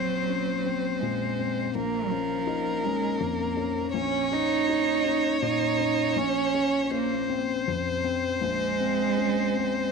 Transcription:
0, 0, Header, 1, 4, 480
1, 0, Start_track
1, 0, Key_signature, -5, "minor"
1, 0, Tempo, 735294
1, 1142, Time_signature, 3, 2, 24, 8
1, 3540, Tempo, 749064
1, 6421, End_track
2, 0, Start_track
2, 0, Title_t, "Violin"
2, 0, Program_c, 0, 40
2, 0, Note_on_c, 0, 72, 44
2, 1138, Note_on_c, 0, 70, 49
2, 1148, Note_off_c, 0, 72, 0
2, 2576, Note_off_c, 0, 70, 0
2, 2580, Note_on_c, 0, 73, 53
2, 4491, Note_on_c, 0, 72, 58
2, 4500, Note_off_c, 0, 73, 0
2, 6421, Note_off_c, 0, 72, 0
2, 6421, End_track
3, 0, Start_track
3, 0, Title_t, "Upright piano"
3, 0, Program_c, 1, 0
3, 0, Control_c, 1, 64, 127
3, 0, Note_on_c, 1, 34, 40
3, 0, Note_on_c, 1, 60, 36
3, 184, Note_on_c, 1, 61, 31
3, 324, Note_off_c, 1, 60, 0
3, 423, Note_off_c, 1, 61, 0
3, 428, Note_on_c, 1, 60, 37
3, 668, Note_on_c, 1, 46, 37
3, 810, Note_off_c, 1, 60, 0
3, 902, Note_on_c, 1, 60, 37
3, 1049, Note_off_c, 1, 46, 0
3, 1116, Note_off_c, 1, 34, 0
3, 1142, Note_off_c, 1, 60, 0
3, 1144, Note_on_c, 1, 34, 48
3, 1154, Control_c, 1, 64, 0
3, 1246, Control_c, 1, 64, 127
3, 1376, Note_on_c, 1, 61, 38
3, 1613, Note_on_c, 1, 63, 34
3, 1761, Note_off_c, 1, 61, 0
3, 1855, Note_off_c, 1, 63, 0
3, 1859, Note_on_c, 1, 61, 41
3, 2090, Note_on_c, 1, 41, 40
3, 2241, Note_off_c, 1, 61, 0
3, 2328, Note_on_c, 1, 61, 42
3, 2478, Note_off_c, 1, 41, 0
3, 2553, Note_off_c, 1, 34, 0
3, 2572, Note_on_c, 1, 34, 53
3, 2573, Note_off_c, 1, 61, 0
3, 2589, Control_c, 1, 64, 0
3, 2696, Control_c, 1, 64, 127
3, 2817, Note_on_c, 1, 61, 42
3, 3063, Note_on_c, 1, 63, 37
3, 3202, Note_off_c, 1, 61, 0
3, 3296, Note_on_c, 1, 61, 43
3, 3301, Note_off_c, 1, 63, 0
3, 3539, Note_on_c, 1, 46, 43
3, 3681, Note_off_c, 1, 61, 0
3, 3770, Note_on_c, 1, 61, 43
3, 3921, Note_off_c, 1, 46, 0
3, 3988, Note_off_c, 1, 34, 0
3, 4013, Note_off_c, 1, 61, 0
3, 4013, Note_on_c, 1, 34, 51
3, 4027, Control_c, 1, 64, 0
3, 4132, Control_c, 1, 64, 127
3, 4258, Note_on_c, 1, 61, 45
3, 4485, Note_off_c, 1, 61, 0
3, 4494, Note_on_c, 1, 61, 39
3, 4736, Note_on_c, 1, 60, 47
3, 4737, Note_off_c, 1, 61, 0
3, 4983, Note_on_c, 1, 41, 46
3, 5120, Note_off_c, 1, 60, 0
3, 5218, Note_on_c, 1, 60, 45
3, 5363, Note_off_c, 1, 41, 0
3, 5429, Note_off_c, 1, 34, 0
3, 5456, Note_on_c, 1, 34, 50
3, 5457, Note_off_c, 1, 60, 0
3, 5469, Control_c, 1, 64, 0
3, 5563, Control_c, 1, 64, 127
3, 5702, Note_on_c, 1, 60, 44
3, 5942, Note_on_c, 1, 61, 36
3, 6085, Note_off_c, 1, 60, 0
3, 6181, Note_off_c, 1, 61, 0
3, 6185, Note_on_c, 1, 60, 40
3, 6421, Note_off_c, 1, 34, 0
3, 6421, Note_off_c, 1, 60, 0
3, 6421, End_track
4, 0, Start_track
4, 0, Title_t, "Cello"
4, 0, Program_c, 2, 42
4, 0, Note_on_c, 2, 54, 74
4, 655, Note_on_c, 2, 56, 52
4, 664, Note_off_c, 2, 54, 0
4, 1131, Note_off_c, 2, 56, 0
4, 1135, Note_on_c, 2, 58, 72
4, 1365, Note_on_c, 2, 53, 68
4, 1375, Note_off_c, 2, 58, 0
4, 1854, Note_on_c, 2, 56, 72
4, 1863, Note_off_c, 2, 53, 0
4, 2082, Note_on_c, 2, 58, 58
4, 2091, Note_off_c, 2, 56, 0
4, 2570, Note_off_c, 2, 58, 0
4, 2574, Note_on_c, 2, 61, 76
4, 2824, Note_on_c, 2, 63, 84
4, 2834, Note_off_c, 2, 61, 0
4, 3537, Note_off_c, 2, 63, 0
4, 3541, Note_on_c, 2, 63, 79
4, 4022, Note_on_c, 2, 61, 83
4, 4031, Note_off_c, 2, 63, 0
4, 4501, Note_off_c, 2, 61, 0
4, 4503, Note_on_c, 2, 58, 66
4, 4737, Note_off_c, 2, 58, 0
4, 5454, Note_on_c, 2, 56, 85
4, 6421, Note_off_c, 2, 56, 0
4, 6421, End_track
0, 0, End_of_file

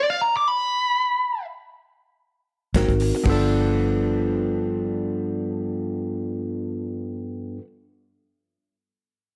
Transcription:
0, 0, Header, 1, 7, 480
1, 0, Start_track
1, 0, Tempo, 500000
1, 8985, End_track
2, 0, Start_track
2, 0, Title_t, "Lead electric guitar"
2, 0, Program_c, 0, 29
2, 96, Note_on_c, 0, 77, 86
2, 192, Note_off_c, 0, 77, 0
2, 206, Note_on_c, 0, 82, 93
2, 326, Note_off_c, 0, 82, 0
2, 353, Note_on_c, 0, 86, 88
2, 460, Note_off_c, 0, 86, 0
2, 460, Note_on_c, 0, 83, 91
2, 1398, Note_off_c, 0, 83, 0
2, 8985, End_track
3, 0, Start_track
3, 0, Title_t, "Tine electric piano"
3, 0, Program_c, 1, 4
3, 2644, Note_on_c, 1, 60, 57
3, 2645, Note_on_c, 1, 63, 59
3, 2646, Note_on_c, 1, 70, 65
3, 2647, Note_on_c, 1, 66, 62
3, 3123, Note_on_c, 1, 59, 79
3, 3135, Note_off_c, 1, 60, 0
3, 3135, Note_off_c, 1, 63, 0
3, 3136, Note_off_c, 1, 66, 0
3, 3136, Note_off_c, 1, 70, 0
3, 3136, Note_on_c, 1, 62, 77
3, 3144, Note_on_c, 1, 65, 71
3, 3162, Note_on_c, 1, 69, 96
3, 7263, Note_off_c, 1, 59, 0
3, 7276, Note_off_c, 1, 62, 0
3, 7284, Note_off_c, 1, 65, 0
3, 7302, Note_off_c, 1, 69, 0
3, 8985, End_track
4, 0, Start_track
4, 0, Title_t, "Clean electric guitar"
4, 0, Program_c, 2, 27
4, 2645, Note_on_c, 2, 44, 71
4, 2651, Note_on_c, 2, 54, 78
4, 2655, Note_on_c, 2, 58, 81
4, 2662, Note_on_c, 2, 60, 87
4, 2801, Note_off_c, 2, 44, 0
4, 2803, Note_off_c, 2, 54, 0
4, 2805, Note_off_c, 2, 58, 0
4, 2809, Note_off_c, 2, 60, 0
4, 3107, Note_on_c, 2, 43, 78
4, 3135, Note_on_c, 2, 53, 76
4, 3160, Note_on_c, 2, 59, 74
4, 3183, Note_on_c, 2, 62, 76
4, 7285, Note_off_c, 2, 43, 0
4, 7313, Note_off_c, 2, 53, 0
4, 7339, Note_off_c, 2, 59, 0
4, 7361, Note_off_c, 2, 62, 0
4, 8985, End_track
5, 0, Start_track
5, 0, Title_t, "Fingered electric bass"
5, 0, Program_c, 3, 33
5, 2637, Note_on_c, 3, 32, 99
5, 2754, Note_off_c, 3, 32, 0
5, 2771, Note_on_c, 3, 32, 90
5, 2984, Note_off_c, 3, 32, 0
5, 3122, Note_on_c, 3, 31, 86
5, 7262, Note_off_c, 3, 31, 0
5, 8985, End_track
6, 0, Start_track
6, 0, Title_t, "Muted clean electric guitar strokes"
6, 2887, Note_on_c, 9, 29, 50
6, 2983, Note_off_c, 9, 29, 0
6, 3022, Note_on_c, 9, 29, 50
6, 3118, Note_off_c, 9, 29, 0
6, 8985, End_track
7, 0, Start_track
7, 0, Title_t, "Drums"
7, 2633, Note_on_c, 9, 42, 75
7, 2635, Note_on_c, 9, 36, 89
7, 2647, Note_on_c, 9, 38, 109
7, 2729, Note_off_c, 9, 42, 0
7, 2731, Note_off_c, 9, 36, 0
7, 2743, Note_off_c, 9, 38, 0
7, 2770, Note_on_c, 9, 36, 76
7, 2774, Note_on_c, 9, 42, 34
7, 2866, Note_off_c, 9, 36, 0
7, 2870, Note_off_c, 9, 42, 0
7, 2877, Note_on_c, 9, 46, 81
7, 2973, Note_off_c, 9, 46, 0
7, 3123, Note_on_c, 9, 49, 77
7, 3126, Note_on_c, 9, 36, 99
7, 3219, Note_off_c, 9, 49, 0
7, 3222, Note_off_c, 9, 36, 0
7, 8985, End_track
0, 0, End_of_file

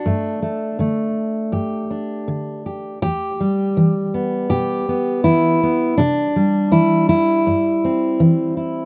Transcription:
0, 0, Header, 1, 2, 480
1, 0, Start_track
1, 0, Tempo, 743494
1, 28, Time_signature, 4, 2, 24, 8
1, 2909, Tempo, 735294
1, 5746, End_track
2, 0, Start_track
2, 0, Title_t, "Steel-string acoustic guitar"
2, 0, Program_c, 0, 25
2, 0, Note_on_c, 0, 62, 74
2, 36, Note_on_c, 0, 43, 68
2, 39, Note_on_c, 0, 57, 47
2, 266, Note_off_c, 0, 57, 0
2, 274, Note_on_c, 0, 57, 44
2, 460, Note_off_c, 0, 43, 0
2, 508, Note_off_c, 0, 57, 0
2, 510, Note_on_c, 0, 50, 55
2, 517, Note_on_c, 0, 57, 44
2, 937, Note_off_c, 0, 50, 0
2, 982, Note_on_c, 0, 43, 57
2, 985, Note_on_c, 0, 67, 47
2, 1222, Note_off_c, 0, 62, 0
2, 1230, Note_on_c, 0, 62, 41
2, 1418, Note_off_c, 0, 43, 0
2, 1470, Note_on_c, 0, 50, 58
2, 1709, Note_off_c, 0, 67, 0
2, 1717, Note_on_c, 0, 67, 40
2, 1904, Note_off_c, 0, 50, 0
2, 1925, Note_off_c, 0, 62, 0
2, 1926, Note_off_c, 0, 67, 0
2, 1928, Note_off_c, 0, 57, 0
2, 1951, Note_on_c, 0, 67, 103
2, 1952, Note_on_c, 0, 40, 72
2, 2197, Note_on_c, 0, 55, 46
2, 2384, Note_off_c, 0, 40, 0
2, 2433, Note_on_c, 0, 52, 62
2, 2674, Note_on_c, 0, 59, 45
2, 2864, Note_off_c, 0, 52, 0
2, 2896, Note_off_c, 0, 67, 0
2, 2904, Note_on_c, 0, 67, 93
2, 2910, Note_on_c, 0, 47, 62
2, 3150, Note_off_c, 0, 59, 0
2, 3157, Note_on_c, 0, 59, 47
2, 3344, Note_off_c, 0, 47, 0
2, 3386, Note_off_c, 0, 67, 0
2, 3388, Note_on_c, 0, 64, 88
2, 3396, Note_on_c, 0, 52, 64
2, 3637, Note_off_c, 0, 59, 0
2, 3644, Note_on_c, 0, 59, 42
2, 3828, Note_off_c, 0, 52, 0
2, 3866, Note_off_c, 0, 59, 0
2, 3868, Note_on_c, 0, 62, 87
2, 3873, Note_off_c, 0, 64, 0
2, 3881, Note_on_c, 0, 48, 73
2, 4117, Note_off_c, 0, 55, 0
2, 4119, Note_on_c, 0, 55, 47
2, 4311, Note_off_c, 0, 48, 0
2, 4351, Note_on_c, 0, 52, 64
2, 4354, Note_on_c, 0, 64, 85
2, 4588, Note_off_c, 0, 64, 0
2, 4596, Note_on_c, 0, 64, 81
2, 4787, Note_off_c, 0, 52, 0
2, 4834, Note_off_c, 0, 62, 0
2, 4842, Note_on_c, 0, 43, 65
2, 5089, Note_on_c, 0, 60, 45
2, 5270, Note_off_c, 0, 43, 0
2, 5320, Note_on_c, 0, 52, 68
2, 5551, Note_off_c, 0, 64, 0
2, 5561, Note_on_c, 0, 64, 41
2, 5745, Note_off_c, 0, 52, 0
2, 5746, Note_off_c, 0, 55, 0
2, 5746, Note_off_c, 0, 60, 0
2, 5746, Note_off_c, 0, 64, 0
2, 5746, End_track
0, 0, End_of_file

